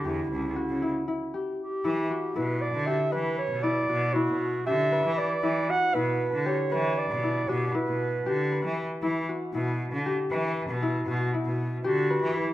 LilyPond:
<<
  \new Staff \with { instrumentName = "Clarinet" } { \time 7/8 \key e \dorian \tempo 4 = 117 e'2~ e'8 r8 g'8~ | g'4 b'8 d''8 e''8 b'8 cis''8 | d''4 fis'4 e''4 d''8~ | d''8 fis''8 b'4 cis''4 d''8~ |
d''8 g'8 b'2 r8 | r2. r8 | r2 fis'4 e'8 | }
  \new Staff \with { instrumentName = "Harp" } { \time 7/8 \key e \dorian g'4 fis'8 e'8 e'8 g'4 | e'8 fis'8 e'4 g'8 b'4 | e'8 fis'8 e'4 g'8 b'4 | e'8 fis'8 e'4 g'8 b'4 |
e'8 fis'8 e'4 g'8 b'4 | e'8 fis'8 e'4 g'8 b'4 | e'8 fis'8 e'4 g'8 b'4 | }
  \new Staff \with { instrumentName = "Cello" } { \clef bass \time 7/8 \key e \dorian e,8 cis,8 r16 cis8 r4. r16 | e8 r8 b,8. d8 r16 e8. b,16~ | b,8 b,8 r16 b,8. d8. e8 r16 | e8 r8 b,8. d8 r16 e8. b,16~ |
b,8 b,8 r16 b,8. d8. e8 r16 | e8 r8 b,8. d8 r16 e8. b,16~ | b,8 b,8 r16 b,8. d8. e8 r16 | }
>>